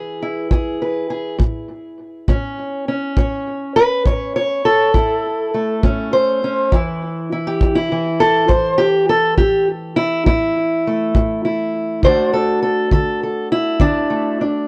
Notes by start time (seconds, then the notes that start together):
Already playing: E2 E3 E4 G#4 B4
0.22 E4
0.51 E2 G#4, kick
0.82 B4
1.10 G#4
1.38 A2, kick
2.28 A2 C#4, kick
2.88 C#4
3.17 A2 C#5, kick
3.76 B4
4.05 A2 C#5, kick
4.36 C#5
4.65 A4
4.94 A2 E4, kick
5.54 A3
5.83 A2 C#4, kick
6.13 C5
6.44 C#4
6.72 E2 E3 E4, kick
7.32 E4
7.47 G4
7.61 E2, kick
7.75 E4
7.92 E3
8.20 A4
8.48 A2 C5, kick
8.78 G4
9.09 A4
9.38 A2 G4, kick
9.96 E4
10.26 A2 E4, kick
10.87 A3
11.15 A2, kick
11.45 E4
12.03 D3 A3 D4 F#4 C5, kick
12.33 A4
12.62 A4
12.91 D3 A4, kick
13.23 A4
13.52 E4
13.80 D3 D4, kick
14.10 A3
14.41 D4